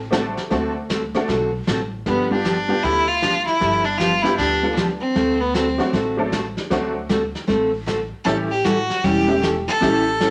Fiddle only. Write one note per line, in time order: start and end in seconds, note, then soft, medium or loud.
2.07 2.30 B3 medium
2.31 2.84 D4 medium
2.83 3.09 E4 loud
3.08 3.46 F4 loud
3.46 3.86 E4 loud
3.84 3.99 D4 medium
3.98 4.23 F4 loud
4.22 4.36 E4 loud
4.36 4.74 D4 loud
5.00 5.41 C4 medium
5.40 5.55 B3 medium
5.54 5.93 C4 medium
8.24 8.36 A4 medium
8.51 8.66 G4 medium
8.65 9.05 F#4 loud
9.04 9.43 G4 loud
9.67 10.30 A4 loud